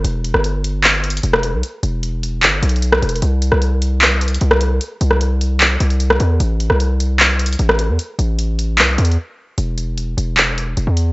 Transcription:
0.04 E1, closed hi-hat
0.24 closed hi-hat
0.34 G1, cross-stick
0.44 closed hi-hat
0.64 closed hi-hat
0.84 clap, closed hi-hat
1.04 closed hi-hat
1.10 closed hi-hat
1.17 closed hi-hat
1.23 E1, closed hi-hat
1.33 cross-stick
1.43 closed hi-hat
1.53 B1
1.63 closed hi-hat
1.83 E1, closed hi-hat
2.03 closed hi-hat
2.23 closed hi-hat
2.43 G1, clap, closed hi-hat
2.62 B1, closed hi-hat
2.69 closed hi-hat
2.76 closed hi-hat
2.82 closed hi-hat
2.92 cross-stick
3.02 E1, closed hi-hat
3.09 closed hi-hat
3.15 closed hi-hat
3.22 C2, closed hi-hat
3.42 closed hi-hat
3.52 C2, cross-stick
3.62 closed hi-hat
3.82 closed hi-hat
4.01 clap, closed hi-hat
4.21 closed hi-hat
4.28 closed hi-hat
4.35 closed hi-hat
4.41 C2, closed hi-hat
4.51 cross-stick
4.61 closed hi-hat
4.81 closed hi-hat
5.01 C2, closed hi-hat
5.11 cross-stick
5.21 closed hi-hat
5.41 closed hi-hat
5.61 clap, closed hi-hat
5.80 C2, closed hi-hat
5.90 closed hi-hat
6.00 closed hi-hat
6.10 cross-stick
6.20 E2, closed hi-hat
6.40 A1, closed hi-hat
6.60 closed hi-hat
6.70 C2, cross-stick
6.80 closed hi-hat
7.00 closed hi-hat
7.19 clap, closed hi-hat
7.39 closed hi-hat
7.46 closed hi-hat
7.53 closed hi-hat
7.59 A1, closed hi-hat
7.69 cross-stick
7.79 closed hi-hat
7.89 E2
7.99 closed hi-hat
8.19 A1, closed hi-hat
8.39 closed hi-hat
8.59 closed hi-hat
8.78 C2, clap, closed hi-hat
8.98 E2, closed hi-hat
9.05 closed hi-hat
9.12 closed hi-hat
9.58 E1, closed hi-hat
9.78 closed hi-hat
9.98 closed hi-hat
10.17 E1, closed hi-hat
10.37 clap, closed hi-hat
10.58 closed hi-hat
10.77 E1, closed hi-hat
10.87 E2
10.97 closed hi-hat

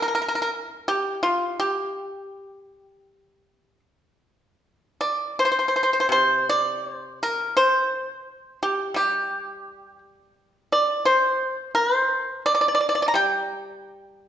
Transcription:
0.02 A#4
0.08 A#4
0.15 A#4
0.22 A#4
0.28 A#4
0.35 A#4
0.42 A#4
0.88 G4
1.23 F4
1.60 G4
5.01 D5
5.39 C5
5.45 C5
5.52 C5
5.59 C5
5.68 C5
5.76 C5
5.83 C5
5.93 C5
6.00 C5
6.09 C3 C5
6.49 D5
6.92 C5
7.23 A#4
7.57 C5
8.63 G4
8.94 G3 G4
10.72 D5
11.05 C5
11.75 A#4
11.95 C5
12.46 D5
12.55 D5
12.61 D5
12.68 D5
12.75 D5
12.81 D5
12.89 D5
12.95 D5
13.02 D5
13.08 A#5
13.14 G3 G5

